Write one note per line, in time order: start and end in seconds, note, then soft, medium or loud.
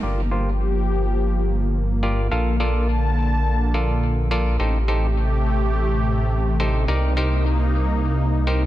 0.03 2.29 G1 medium
0.03 2.29 F3 medium
0.03 4.56 A#3 medium
0.03 0.21 F4 medium
0.03 2.29 G4 medium
0.03 0.21 G4 medium
0.03 0.21 A#4 medium
0.03 0.21 D5 medium
0.31 0.50 F4 medium
0.31 0.50 G4 medium
0.31 0.50 A#4 medium
0.31 0.50 C5 medium
2.03 2.28 F4 medium
2.03 2.28 G4 medium
2.03 2.28 A#4 medium
2.03 2.28 D5 medium
2.31 4.57 A#1 medium
2.31 4.58 D3 medium
2.31 2.56 F4 medium
2.31 2.56 A4 medium
2.31 2.56 A#4 medium
2.31 2.56 F5 medium
2.31 4.58 A5 medium
2.60 2.87 F4 medium
2.60 2.87 A4 medium
2.60 2.87 A#4 medium
2.60 2.87 D5 loud
3.74 4.28 F4 medium
3.74 4.28 A4 medium
3.74 4.28 A#4 medium
3.74 4.28 D5 medium
4.31 4.57 F4 medium
4.31 4.57 A4 medium
4.31 4.57 A#4 medium
4.31 4.57 D5 loud
4.60 6.86 A1 medium
4.60 8.66 C3 medium
4.60 6.86 A3 medium
4.60 4.78 D#4 medium
4.60 4.78 G4 medium
4.60 6.86 G4 medium
4.60 4.78 A4 medium
4.60 4.78 C5 medium
4.88 5.07 D#4 medium
4.88 5.07 G4 medium
4.88 5.07 A4 medium
4.88 5.07 C5 medium
6.60 6.85 D#4 medium
6.60 6.85 G4 medium
6.60 6.85 A4 medium
6.60 6.85 C5 loud
6.88 8.66 C2 medium
6.88 8.66 A#3 medium
6.88 8.66 D#4 medium
6.88 7.13 D#4 medium
6.88 7.13 G4 medium
6.88 7.13 A#4 medium
6.88 7.13 D5 medium
7.17 7.44 D#4 medium
7.17 7.44 G4 medium
7.17 7.44 A#4 medium
7.17 7.44 C5 loud
8.47 8.63 D#4 medium
8.47 8.63 G4 medium
8.47 8.63 A#4 medium
8.47 8.63 C5 medium